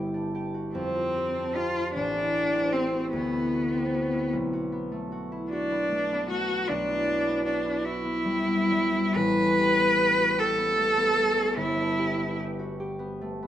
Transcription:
Already playing: G1 B3 D4 E4 G4 D5
0.14 D4
0.35 G4
0.54 F#4
0.75 F2 C4
0.95 F4
1.16 G4
1.36 D4
1.55 F4 G4
1.76 F4
1.94 A1 D4
2.15 E4
2.34 G4
2.54 C4
2.73 C4 G4
2.93 F#4
3.12 D2 B3
3.32 E4
3.53 F#4
3.73 C4
3.94 F#4
4.14 E4
4.33 B1
4.53 F#4
4.72 B3
4.92 A3
5.12 F#4
5.32 E4
5.51 D4 F#4
5.71 B3
5.92 A3
6.12 B3
6.30 A3 F#4
6.50 F#4
6.68 B1 D4
6.89 E4
7.07 F#4
7.26 B3
7.45 D4 F#4
7.64 E4
7.84 E4 F#4
8.05 B3
8.25 G3
8.47 B3
8.71 G3
8.95 E4
9.15 A1 B4
9.37 C#4
9.59 G4
9.79 B3
9.99 G4
10.18 F#4
10.38 G4 A4
10.58 B3
10.77 A3
10.96 B3
11.16 A3
11.36 C#4
11.56 G1 E4
11.77 D4
11.99 G4
12.18 B3
12.40 G4
12.59 F#4
12.80 G4
12.99 B3
13.21 A3
13.43 B3

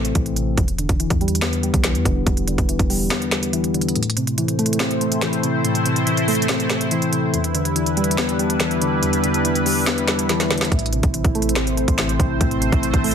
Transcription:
Already playing: A1 A2 C3 E3 A3 C4
0.05 closed hi-hat
0.15 A1 E3, kick, closed hi-hat
0.26 closed hi-hat
0.36 C3, closed hi-hat
0.58 E1 E2, kick, closed hi-hat
0.68 closed hi-hat
0.78 D3, closed hi-hat
0.89 E1, kick, closed hi-hat
1.00 E3, closed hi-hat
1.10 E2, kick, closed hi-hat
1.21 G3, closed hi-hat
1.28 closed hi-hat
1.35 closed hi-hat
1.41 B3, finger snap, snare, closed hi-hat
1.53 closed hi-hat
1.63 G3, closed hi-hat
1.74 B1, kick, closed hi-hat
1.84 E3, finger snap, snare, closed hi-hat
1.95 E2, closed hi-hat
2.05 E1 D3, kick, closed hi-hat
2.27 E1 E2, kick, closed hi-hat
2.37 closed hi-hat
2.48 D3, closed hi-hat
2.58 E1, kick, closed hi-hat
2.69 E3, closed hi-hat
2.79 E1, kick, closed hi-hat
2.90 G3, open hi-hat
3.10 B3, finger snap, snare
3.22 closed hi-hat
3.31 G3, finger snap, snare, closed hi-hat
3.43 closed hi-hat
3.53 E3, closed hi-hat
3.64 closed hi-hat
3.74 D3, closed hi-hat
3.81 closed hi-hat
3.88 closed hi-hat
3.96 A2 A3 C4 E4 C5, closed hi-hat
4.03 closed hi-hat
4.10 closed hi-hat
4.17 C3, closed hi-hat
4.27 closed hi-hat
4.38 E3, closed hi-hat
4.48 closed hi-hat
4.59 A3, closed hi-hat
4.66 closed hi-hat
4.73 closed hi-hat
4.79 C4, finger snap, snare, closed hi-hat
4.91 closed hi-hat
5.01 A3, closed hi-hat
5.12 closed hi-hat
5.21 E3, finger snap, snare, closed hi-hat
5.33 closed hi-hat
5.43 C3, closed hi-hat
5.65 A2, closed hi-hat
5.75 closed hi-hat
5.86 C3, closed hi-hat
5.96 closed hi-hat
6.07 E3, closed hi-hat
6.17 closed hi-hat
6.28 A3, closed hi-hat, open hi-hat
6.35 closed hi-hat
6.42 closed hi-hat
6.48 C4, finger snap, snare, closed hi-hat
6.60 closed hi-hat
6.70 A3, finger snap, snare, closed hi-hat
6.81 closed hi-hat
6.91 E3, closed hi-hat
7.02 closed hi-hat
7.13 C3, closed hi-hat
7.34 E2 G3 D4 E4 B4, closed hi-hat
7.44 closed hi-hat
7.55 D3, closed hi-hat
7.65 closed hi-hat
7.76 E3, closed hi-hat
7.86 closed hi-hat
7.97 G3, closed hi-hat
8.04 closed hi-hat
8.11 closed hi-hat
8.17 B3, finger snap, snare, closed hi-hat
8.29 closed hi-hat
8.39 G3, closed hi-hat
8.50 closed hi-hat
8.60 E3, finger snap, snare, closed hi-hat
8.71 closed hi-hat
8.82 D3, closed hi-hat
9.03 E2, closed hi-hat
9.13 closed hi-hat
9.24 D3, closed hi-hat
9.34 closed hi-hat
9.45 E3, closed hi-hat
9.55 closed hi-hat
9.66 G3, open hi-hat
9.86 B3, finger snap, snare
9.98 closed hi-hat
10.08 G3, finger snap, snare, closed hi-hat
10.19 closed hi-hat
10.29 E3, snare, closed hi-hat
10.40 snare, closed hi-hat
10.51 D3, snare, closed hi-hat
10.58 snare, closed hi-hat
10.65 closed hi-hat
10.72 A1 A2 A3 C4 C5, kick, closed hi-hat
10.79 closed hi-hat
10.86 closed hi-hat
10.93 C3, closed hi-hat
11.03 A1, kick, closed hi-hat
11.14 E3, closed hi-hat
11.24 A1, kick, closed hi-hat
11.35 A3, closed hi-hat
11.42 closed hi-hat
11.49 closed hi-hat
11.55 C4, finger snap, snare, closed hi-hat
11.67 closed hi-hat
11.77 A3, closed hi-hat
11.88 A1, kick, closed hi-hat
11.98 E3, finger snap, snare, closed hi-hat
12.09 closed hi-hat
12.20 A1 C3, kick, closed hi-hat
12.41 A1 A2, kick, closed hi-hat
12.51 closed hi-hat
12.62 C3, closed hi-hat
12.72 A1, kick, closed hi-hat
12.83 E3, closed hi-hat
12.94 A1, kick, closed hi-hat
13.04 A3, closed hi-hat, open hi-hat
13.11 closed hi-hat

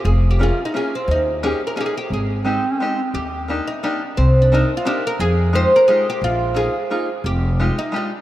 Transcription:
0.05 F1 G#4
0.31 G4
0.39 A#3 C#4 F4 G#4
0.65 D#4
0.74 A#3 C#4 F4 G#4
0.95 C4
1.08 D#2 D#4
1.43 A#3 C#4 D#4 G4 G#4
1.67 A#4
1.76 A#3 C#4 D#4 G#4
1.81 G4
1.86 G#4
1.97 G4
2.10 G#1 G#4
2.44 G#3 C4 D#4 G4
2.71 C#4
2.79 G#3 C4 D#4 G4
3.14 D#2 G4
3.48 A#3 D4 D#4 G4
3.68 D#4
3.83 A#3 D4 D#4 G4
4.17 C2 C4
4.42 D4
4.52 C4 D4 D#4 A#4
4.77 F4
4.85 C4 D4 D#4 G4 A#4
5.07 A#4
5.19 F2 G#4
5.53 G#3 D#4 F4 G4 C5
5.76 A#4
5.88 G#3 D#4 F4 G4 G#4
6.10 G4
6.22 A#1 F4
6.54 A#3 D#4 F4 G#4
6.90 A#3 D#4 F4 G#4
7.24 F1 G4
7.60 G#3 D#4 F4 G4
7.79 D#4
7.92 G#3 D#4 F4 G4
7.96 D4

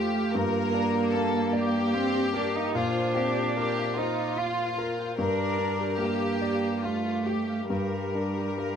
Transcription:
Already playing: F2 A3 F4 G4 A4 C5 F5
0.15 F5
0.33 G2 A#3 G4 A#4
0.74 D4 D5
0.94 G4
1.13 A#3 A4 F5
1.34 D5
1.52 G4 D5
1.93 C4 F5
2.15 G4
2.34 D4 A#4
2.56 D#4 F5
2.75 A#2 D4 F4 C5
3.16 C4 G4 F5
3.57 G4 A#4 C6
3.78 F5
3.97 D#4 F4 C5
4.18 D5
4.37 F4 F5
4.78 A#4
4.99 G5
5.18 G2 D4 G4 A#4
5.58 D4
5.80 G4
5.99 A#3 G4 A#4 F5
6.22 D5
6.42 G4 D5
6.83 A3 F4 F5
7.06 G4
7.26 G4
7.49 F5
7.70 G2 G3 G4 A#4
8.15 D4 D5
8.37 G4
8.58 A#4 F5

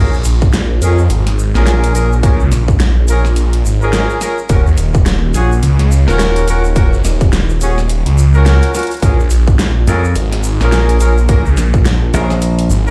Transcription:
Already playing: A#1 C#4 F4 G#4 A#4
0.13 A#1, shaker
0.24 A#1, closed hi-hat, shaker
0.42 kick, shaker
0.53 snare, closed hi-hat, shaker
0.82 F2 C#4 F4 G#4 A#4, closed hi-hat, shaker
0.98 shaker
1.10 G#1, closed hi-hat, shaker
1.27 snare, closed hi-hat
1.39 shaker
1.55 A#1 C#4 F4 G#4 A#4, snare, shaker
1.58 snare
1.61 snare
1.64 snare
1.67 snare, closed hi-hat, shaker
1.71 snare
1.75 snare
1.79 snare
1.84 closed hi-hat, shaker
1.95 A#1 C#4 F4 G#4 A#4, closed hi-hat, shaker
2.12 shaker
2.23 C#4 F4 G#4 A#4, kick, closed hi-hat, shaker
2.40 C#2, shaker
2.51 A#1, snare, closed hi-hat, shaker
2.68 kick, shaker
2.80 snare, closed hi-hat, shaker
3.08 A#1 C#4 F4 G#4 A#4, closed hi-hat, shaker
3.25 snare, shaker
3.36 closed hi-hat, shaker
3.53 closed hi-hat
3.65 G#1, shaker
3.81 C#4 F4 G#4 A#4, shaker
3.93 snare, closed hi-hat, shaker
4.10 shaker
4.21 C#4 F4 G#4 A#4, snare, closed hi-hat, shaker
4.38 shaker
4.49 D#1 C#4 F4 F#4 A#4, kick, closed hi-hat, shaker
4.66 D#2, shaker
4.78 D#1, closed hi-hat, shaker
4.94 kick, shaker
5.06 snare, closed hi-hat, shaker
5.34 A#1 C#4 F4 F#4 G#4, closed hi-hat, shaker
5.52 shaker
5.63 C#2, closed hi-hat, shaker
5.79 snare, closed hi-hat
5.92 shaker
6.08 D#1 C#4 F4 F#4 A#4, snare, shaker
6.19 snare, closed hi-hat, shaker
6.36 closed hi-hat, shaker
6.48 D#1 C#4 F4 F#4 A#4, closed hi-hat, shaker
6.64 shaker
6.76 C#4 F4 F#4 A#4, kick, closed hi-hat, shaker
6.92 F#1, shaker
7.04 D#1, snare, closed hi-hat, shaker
7.21 kick, closed hi-hat, shaker
7.32 snare, closed hi-hat, shaker
7.49 shaker
7.61 D#1 C#4 F4 F#4 G#4, closed hi-hat, shaker
7.78 snare, shaker
7.89 closed hi-hat, shaker
8.06 C#2, closed hi-hat
8.18 shaker
8.34 C#4 F4 F#4 A#4, shaker
8.46 snare, closed hi-hat, shaker
8.62 closed hi-hat, shaker
8.74 C#4 F4 F#4 A#4, snare, closed hi-hat, shaker
8.79 closed hi-hat
8.83 closed hi-hat
8.87 closed hi-hat, shaker
8.91 closed hi-hat
8.94 closed hi-hat
8.97 closed hi-hat
9.00 A#1 C#4 F4 G#4 A#4, kick, closed hi-hat, shaker
9.03 closed hi-hat
9.19 A#1, shaker
9.30 A#1, closed hi-hat, shaker
9.48 kick, shaker
9.59 snare, closed hi-hat, shaker
9.87 F2 C#4 F4 G#4 A#4, closed hi-hat, shaker
10.04 shaker
10.15 G#1, closed hi-hat, shaker
10.32 snare, closed hi-hat
10.44 shaker
10.60 A#1 C#4 F4 G#4 A#4, snare, shaker
10.72 snare, closed hi-hat, shaker
10.89 closed hi-hat, shaker
11.00 A#1 C#4 F4 G#4 A#4, closed hi-hat, shaker
11.18 shaker
11.29 C#4 F4 G#4 A#4, kick, closed hi-hat, shaker
11.46 C#2, shaker
11.57 A#1, snare, closed hi-hat, shaker
11.74 kick, shaker
11.85 snare, closed hi-hat, shaker
12.14 A#1 C#4 F4 G#4 A#4, closed hi-hat, shaker
12.30 snare, shaker
12.41 closed hi-hat, shaker
12.59 closed hi-hat
12.70 G#1, shaker
12.87 C#4 F4 G#4 A#4, shaker

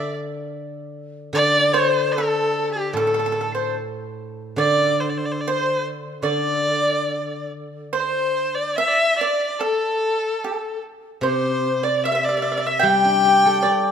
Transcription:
Already playing: D3 D5 E5
1.33 D3 D5
1.73 C5
2.11 A4
2.18 A4
2.72 G4
2.93 A2 A4
3.07 A4
3.14 A4
3.19 A4
3.26 A4
3.32 A4
3.41 A4
3.55 C5
4.56 D3 D5
5.00 C5
5.09 D5
5.18 C5
5.26 D5
5.32 C5
5.41 D5
5.48 C5
6.22 D3 D5
6.27 D5
7.93 C5
7.97 C5
8.55 D5
8.76 E5
8.87 D5 E5
8.92 E5
9.15 D5 E5
9.19 D5
9.59 A4
10.11 G4
10.44 A4
11.21 C3 C5
11.83 D5
12.03 E5
12.12 E5
12.23 D5 E5
12.29 E5
12.37 E5
12.42 E5
12.52 E5
12.57 E5
12.67 E5
12.79 G3 G5
12.85 G5
13.04 D4
13.25 G4
13.46 A4
13.62 D5

